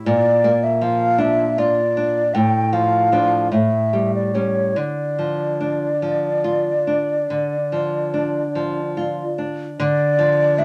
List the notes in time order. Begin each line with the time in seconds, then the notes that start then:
0.06 A#2 D5
0.44 A#3
0.64 E5
0.81 F3 F5
1.18 D4 E5
1.58 F4 D5
1.97 D4
2.34 A2 G5
2.73 F3 F5
3.12 F3 D4
3.52 A2 E5
3.93 G3
4.15 D5
4.35 G3 C#4 C#5
4.76 D3 D5
5.19 F3
5.60 D4
6.02 F3
6.44 F4
6.87 D4
7.30 D3
7.72 F3
8.14 D4
8.55 F3
8.97 F4
9.38 D4
9.80 D3 D5
10.19 F3
10.58 D4 E5